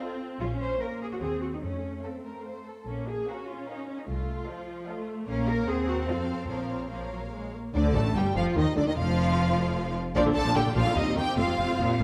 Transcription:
Already playing: viola section C4, cello section F4
0.01 violin section A4 D#5 F5
0.40 double bass section A#1, viola section C#4, cello section F4
0.60 cello section C5
0.81 viola section A#3, cello section A#4, violin section A#4 C#5 F5
1.01 cello section G#4
1.12 cello section F#4
1.21 double bass section D#2, viola section C4, cello section G#4, violin section C5 F#5
1.41 cello section F#4
1.53 cello section D#4
1.62 double bass section F2, viola section A3, cello section C#4
2.03 cello section C4, violin section A4 F5
2.25 violin section A#4
2.44 violin section C5 F5
2.66 violin section A4
2.86 double bass section A#1, viola section A#3, cello section C#4
3.08 cello section G#4
3.28 viola section C#4, cello section F#4, violin section A#4 F5
3.48 cello section F4
3.68 cello section D#4, violin section A#4 F5
3.88 cello section C#4
3.99 cello section D#4
4.08 double bass section C2, viola section A3, cello section F4
4.47 viola section F3, violin section A4 D#5 F5
4.87 viola section A3, violin section A4 D#5 F5
5.26 double bass section A#1, viola section A#3, cello section C#4, violin section A#4 C#5 F5
5.48 cello section A#4
5.67 double bass section D#2, viola section C4, cello section G#4, violin section C5 F#5
5.87 cello section F#4, violin section A#4
6.07 double bass section F2, cello section F4, violin section A4 C5 F5
6.29 cello section C4
6.48 double bass section A#1, viola section F3, cello section C4, violin section A#4 C#5 F5
6.91 viola section F3, cello section A#3, violin section A#4 C#5 F5
7.12 viola section F#3
7.32 viola section G#3
7.53 viola section A#3
7.74 double bass section D2, cello section D2, viola section D3, violin section D4 D5
7.95 double bass section A1, cello section A2, viola section A3, violin section A4 A5
8.15 double bass section G1, cello section G2, viola section G3, violin section G4 G5
8.35 double bass section F1, cello section F2, viola section F3, violin section F4 F5
8.56 cello section D#2, double bass section D#2, viola section D#3, violin section D#4 D#5
8.76 cello section D2, double bass section D2, viola section D3, violin section D4 D5
8.86 cello section D#2, viola section D#3, violin section D#4 D#5
8.95 double bass section F1, cello section F2, viola section F3, violin section F4 F5
10.15 double bass section A#1, cello section A#2, viola section F3 D4, violin section D4 D5
10.26 cello section A#2, viola section D3
10.35 double bass section A#1, cello section A#2, viola section D3, violin section A4 A5
10.45 cello section A#2, viola section F3
10.55 double bass section A#1, cello section A#2, viola section D3, violin section G4 G5
10.65 cello section A#2, viola section D3
10.75 double bass section A#1, cello section A#2, viola section F3, violin section F4 F5
10.85 cello section A#2, viola section D3
10.96 cello section D#2, double bass section D#2, viola section C3 C4, violin section D#4 D#5
11.06 cello section D#2, viola section G3
11.15 double bass section D#2, cello section D#2, viola section D#3, violin section G4 G5
11.37 double bass section F1, cello section F2, viola section A3, violin section F4 F5
11.48 cello section F2, viola section F3
11.58 double bass section F1, cello section F2, viola section C3
11.68 cello section F2, viola section A3
11.79 double bass section F1, cello section A#2, viola section F3
11.89 viola section C3
11.99 double bass section F1, viola section A3

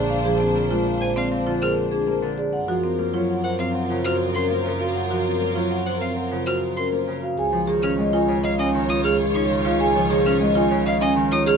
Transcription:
Already playing: double bass A#1, harp D3 F3 G#3 A#3 C4, violin section D4 C5, marimba G#4, vibraphone D5
0.10 vibraphone F5
0.25 harp F3, marimba G#4
0.40 marimba C4, vibraphone G#4
0.56 harp A#3
0.71 harp G#3, marimba F4, vibraphone C5
0.86 vibraphone F5
1.01 marimba C5, violin G#5
1.16 marimba C4, vibraphone D5, violin F5
1.31 harp C4, vibraphone F5
1.46 harp D3, marimba F4
1.62 harp C4, marimba G#4, vibraphone A#4, violin F6
1.91 marimba D4, vibraphone G#4
2.07 harp A#3, vibraphone A#4
2.22 harp D3
2.38 marimba G#4, vibraphone D5
2.53 double bass F#2, violin section F4 A#4, vibraphone F#5
2.68 harp F3, marimba F#4
2.84 marimba C4, vibraphone A#4
2.98 harp A#3
3.14 harp F#3, marimba F4, vibraphone C#5
3.30 vibraphone F#5
3.44 marimba C5, violin F#5
3.59 marimba C4, violin F5, vibraphone F5
3.74 harp C4, vibraphone F#5
3.89 harp C#3, marimba F4
4.04 harp C4, marimba F#4, vibraphone C5, violin F6
4.34 marimba C#4, vibraphone A#4, violin C6
4.49 harp A#3, vibraphone C5
4.65 harp C#3
4.80 marimba F#4, vibraphone F5
4.95 vibraphone F#5
5.10 harp F3, marimba F#4
5.25 marimba C4, vibraphone A#4
5.41 harp A#3
5.55 harp F#3, marimba F4, vibraphone C#5
5.71 vibraphone F#5
5.86 marimba C5, violin F#5
6.01 marimba C4, violin F5, vibraphone F5
6.16 harp C4, vibraphone F#5
6.31 harp C#3, marimba F4
6.46 harp C4, marimba F#4, vibraphone C5, violin F6
6.77 marimba C#4, vibraphone A#4, violin C6
6.92 harp A#3, vibraphone C5
7.07 harp C#3
7.23 marimba F#4, vibraphone F5
7.37 double bass C#2, violin section F4 C#5, marimba G#4, vibraphone G#5
7.52 harp F3
7.67 harp D#3, marimba G#4, vibraphone G#4
7.82 marimba C#4, harp C#4, violin F6
7.98 harp G#3, vibraphone D#5
8.13 harp D#4, marimba F4, vibraphone G#5
8.28 harp C#3
8.43 marimba D#5, violin F5, vibraphone F5
8.58 marimba C#4, harp D#4, violin D#5, vibraphone G#5
8.74 harp D#3
8.89 harp D#4, marimba F4, vibraphone C#5, violin D#6
9.04 marimba G#4, violin F6
9.19 vibraphone G#4
9.34 harp C#4, marimba D#4, vibraphone C#5, violin C#6
9.50 harp D#3
9.65 harp C#3, marimba F4, vibraphone F5
9.80 marimba G#4, vibraphone G#5
9.95 harp F3
10.10 harp D#3, marimba G#4, vibraphone G#4
10.25 harp C#4, marimba C#4, violin F6
10.40 harp G#3, vibraphone D#5
10.55 harp D#4, marimba F4, vibraphone G#5
10.71 harp C#3
10.86 marimba D#5, violin F5, vibraphone F5
11.00 marimba C#4, harp D#4, violin D#5, vibraphone G#5
11.16 harp D#3
11.31 harp D#4, marimba F4, vibraphone C#5, violin D#6
11.46 marimba G#4, violin F6

